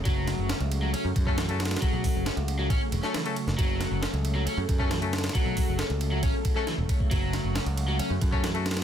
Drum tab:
RD |x---x---x-x-x---x---x---x-x-xxxx|x-------x-x-x---x---x---x-x-x---|x---x---x-x-x---x---x---x-x-xxxx|x-------x-x-x---x---x---x---x---|
HH |--------------------------------|----o---------------------------|--------------------------------|----o---------------------------|
SD |----o---o---------------o---oooo|--------o-------------o-o-----o-|----o---o---------------o---oooo|--------o---------------o-------|
BD |o-------------------o-o---------|o---o-----------o---------------|o-------------------o-o---------|o---o-----------o---o-------o-o-|

RD |x---x---x-x-x---x---x---x-x-xxx-|
HH |--------------------------------|
SD |----o---o---------------o---ooo-|
BD |o-------------------o-o---------|